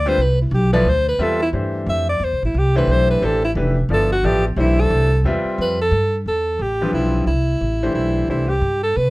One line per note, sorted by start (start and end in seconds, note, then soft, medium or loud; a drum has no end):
0.00 0.17 D2 medium
0.06 0.17 D3 medium
0.06 0.17 G3 medium
0.06 0.17 C4 medium
0.06 0.17 F4 medium
0.06 0.17 B4 medium
0.06 0.23 C5 loud
0.18 0.51 C2 medium
0.22 0.41 B4 medium
0.42 0.56 E4 medium
0.51 0.84 B1 medium
0.51 0.73 G4 medium
0.73 0.84 F3 medium
0.73 0.84 B3 medium
0.73 0.85 E4 medium
0.73 0.85 A4 medium
0.73 0.90 B4 medium
0.73 0.85 D5 loud
0.85 1.18 D2 medium
0.85 1.08 C5 loud
1.09 1.24 B4 medium
1.19 1.52 E2 medium
1.19 1.38 G3 medium
1.19 1.38 C4 medium
1.19 1.38 F4 medium
1.19 1.38 B4 medium
1.19 1.38 E5 medium
1.23 1.42 A4 medium
1.42 1.49 E4 medium
1.53 1.86 G2 medium
1.53 2.04 E3 medium
1.53 2.04 A3 medium
1.53 2.04 D4 medium
1.53 2.04 G4 medium
1.53 2.04 C5 medium
1.86 2.19 F2 medium
1.86 2.08 E5 medium
2.09 2.26 D5 medium
2.20 2.33 E2 medium
2.24 2.43 C5 medium
2.32 2.42 C2 soft
2.43 2.53 A1 medium
2.43 2.60 E4 medium
2.54 2.87 C2 medium
2.59 2.77 G4 medium
2.75 3.19 E3 medium
2.75 3.19 A3 medium
2.75 3.20 D4 medium
2.75 3.20 G4 medium
2.75 2.93 B4 medium
2.75 3.20 C5 medium
2.87 3.20 B1 loud
2.91 3.10 C5 loud
3.11 3.27 B4 medium
3.22 3.55 A1 medium
3.22 3.41 E3 medium
3.22 3.41 A3 medium
3.22 3.41 D4 medium
3.22 3.41 G4 medium
3.22 3.44 A4 medium
3.22 3.41 C5 medium
3.45 3.52 E4 medium
3.55 3.88 F1 medium
3.55 3.75 E3 medium
3.55 3.75 A3 medium
3.55 3.75 D4 medium
3.55 3.75 G4 medium
3.55 3.75 B4 medium
3.89 4.22 G1 medium
3.89 4.09 F3 medium
3.89 4.09 B3 medium
3.89 4.09 E4 medium
3.89 4.09 A4 medium
3.89 4.09 D5 medium
3.94 4.11 A4 medium
4.12 4.27 F#4 medium
4.23 4.56 A1 medium
4.23 4.42 F3 medium
4.23 4.43 B3 medium
4.23 4.43 E4 medium
4.23 4.45 G4 loud
4.23 4.42 A4 medium
4.23 4.43 D5 medium
4.47 4.61 B3 medium
4.56 4.89 B1 medium
4.56 5.07 E3 medium
4.56 5.08 A3 medium
4.56 5.08 D4 medium
4.56 4.82 E4 loud
4.56 5.08 G4 medium
4.56 5.08 C5 medium
4.80 5.26 A4 loud
4.90 5.23 C2 loud
5.24 5.44 E2 medium
5.24 5.75 G3 medium
5.24 5.75 C4 medium
5.24 5.76 F4 medium
5.24 5.76 B4 medium
5.24 5.76 E5 medium
5.45 muted upright bass stroke soft
5.58 5.91 F2 medium
5.58 5.80 B4 medium
5.82 6.18 A4 loud
5.91 6.24 G2 medium
6.26 6.59 E2 medium
6.26 6.63 A4 medium
6.59 6.92 A1 medium
6.59 6.94 G4 medium
6.81 7.25 D3 medium
6.81 7.25 F3 medium
6.81 7.25 G3 medium
6.81 7.25 C4 medium
6.81 7.25 B4 medium
6.93 7.26 B1 medium
6.93 7.25 E4 medium
7.26 7.60 C2 medium
7.26 7.91 E4 medium
7.61 7.94 A1 medium
7.83 8.27 E3 medium
7.83 8.27 A3 medium
7.83 8.27 D4 medium
7.83 8.27 G4 medium
7.83 8.27 C5 medium
7.94 8.27 B1 medium
7.94 8.26 E4 medium
8.28 8.61 C2 medium
8.28 8.48 E3 medium
8.28 8.48 A3 medium
8.28 8.48 D4 medium
8.28 8.50 E4 medium
8.28 8.48 G4 medium
8.28 8.48 C5 medium
8.49 8.83 G4 medium
8.61 8.95 G2 medium
8.83 8.98 A4 medium
8.96 9.10 C3 medium
8.96 9.10 B4 medium